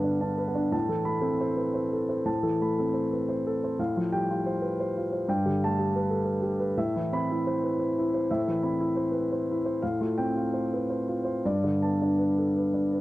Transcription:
Already playing: G2 D3 B3 D4 B4 D5 A5
0.04 D4
0.21 D4 A5
0.38 B4
0.48 B3
0.55 D4
0.72 A2 A5
0.88 E3 A4
1.05 A3 B5
1.21 C4 A4
1.41 C5
1.56 B4
1.74 C5
1.93 A4
2.09 C5
2.25 A2 A5
2.43 E3 A4
2.61 A3 B5
2.78 C4 A4
2.94 C5
3.12 B4
3.29 C5
3.47 A4
3.64 C5
3.79 A2 F5
3.97 F3 F4
4.12 G3 G5
4.30 F4
4.46 C5
4.61 B4
4.80 C5
4.97 F4
5.12 C5
5.28 G2 G5
5.46 D3 G4
5.64 A3 A5
5.79 G4
5.96 B4
6.10 A4
6.25 B4
6.42 G4
6.59 B4
6.77 A2 E5
6.96 E3 E4
7.12 C4 B5
7.31 E4
7.47 C5
7.63 B4
7.79 C5
7.98 E4
8.14 C5
8.31 A2 E5
8.48 E3 E4
8.63 C4 B5
8.80 E4
8.97 C5
9.12 B4
9.32 C5
9.51 E4
9.65 C5
9.82 A2 F5
10.01 A3 F4
10.18 C4 G5
10.37 F4
10.54 C5
10.73 B4
10.90 C5
11.08 F4
11.25 C5
11.45 G2 D5
11.64 D3 D4
11.82 B3 A5
12.02 D4
12.19 B4
12.38 A4
12.57 B4
12.74 D4
12.93 B4

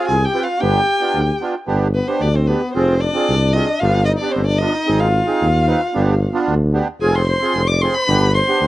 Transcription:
Already playing: C4 F4 G#4
0.08 C2 G#4 G#5
0.25 G4 G5
0.33 C4 F4 B4
0.43 F4 F5
0.60 G1 B3 D4 G4 G5
1.00 B3 D4 F4
1.14 D2
1.41 B3 D4 F4
1.66 G1 B3 D4 G4
1.94 B3 B4
2.08 B3 D4 G4 C5
2.21 D2 D4 D5
2.35 C4 C5
2.47 B3 D4 G4 B4
2.74 F1 C4 F4 G#4 C5
3.00 D4 D5
3.14 C4 F4 G#4
3.29 C2
3.53 C4 F4 G#4 D#5
3.80 G1 B3 D4 F4 G4 F5
4.05 D#4 D#5
4.18 B3 D4 D5
4.22 G4
4.32 G1 C4 C5
4.46 D4 D5
4.58 B3 D4 D#4 F4 D#5
4.85 G#1 C4 D#4 G#4
5.00 F4 F5
5.26 C4 D#4 G#4
5.41 D#2
5.67 C4 D#4 B4
5.93 G1 B3 D4 G4
6.33 B3 D4 F4
6.48 D2
6.73 B3 D4 G4
7.01 F1 C4 F4 G#4 G#5
7.15 C5 C6
7.27 C5 C6
7.41 C4 F4 G#4
7.55 F1
7.67 D5 D6
7.81 C4 F4 G#4 C5 C6
7.94 B4 B5
8.08 G1 B3 D4 G4
8.34 C5 C6
8.48 B3 D4 G4
8.61 D2

